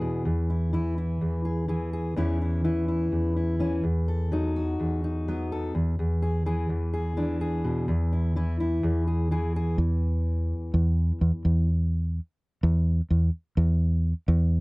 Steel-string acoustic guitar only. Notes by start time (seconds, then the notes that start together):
Already playing: E2 E3 B3 D4 G#4
0.01 B2
0.25 E2
0.50 E4
0.73 E3 E4
0.98 E4
1.21 E2
1.45 G#4
1.68 E3 G#4
1.93 G#4
2.16 E2 E3 C#4 E4
2.42 E4
2.64 E3 E4
2.88 E4
3.12 E2
3.36 E4
3.59 E3 C#4
3.84 E2
4.08 A4
4.32 F#3 D#4
4.56 F#4
4.80 E2
5.04 D#4
5.28 F#3 B3
5.52 A4
5.75 E2
5.99 E2
6.22 G#4
6.46 E3 G#4
6.69 E2
6.93 G#4
7.17 E3 D4
7.41 G#4
7.64 B2
7.88 E2
8.13 E4
8.36 E3 E4
8.60 E4
8.83 E2
9.07 G#4
9.31 E3 G#4
9.56 G#4